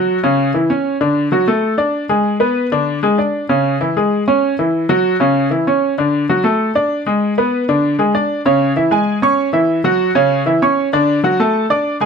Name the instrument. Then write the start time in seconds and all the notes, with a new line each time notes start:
upright piano
Already playing: F#3 F#4
0.23 C#3 C#4
0.54 E3 E4
0.70 C#4 C#5
1.01 D3 D4
1.32 F#3 F#4
1.48 A3 A4
1.78 D4 D5
2.09 G#3 G#4
2.40 B3 B4
2.72 D3 D4
3.03 G#3 G#4
3.18 D4 D5
3.49 C#3 C#4
3.81 E3 E4
3.97 G#3 G#4
4.28 C#4 C#5
4.59 E3 E4
4.89 F#3 F#4
5.20 C#3 C#4
5.50 E3 E4
5.67 C#4 C#5
5.98 D3 D4
6.29 F#3 F#4
6.44 A3 A4
6.75 D4 D5
7.06 G#3 G#4
7.38 B3 B4
7.69 D3 D4
7.99 G#3 G#4
8.15 D4 D5
8.46 C#3 C#4 C#5
8.76 E3 E4 E5
8.91 G#3 G#4 G#5
9.22 C#4 C#5 C#6
9.53 E3 E4 E5
9.84 F#3 F#4 F#5
10.15 C#3 C#4 C#5
10.46 E3 E4 E5
10.62 C#4 C#5 C#6
10.93 D3 D4 D5
11.24 F#3 F#4 F#5
11.40 A3 A4 A5
11.70 D4 D5 D6
12.01 G#3 G#4 G#5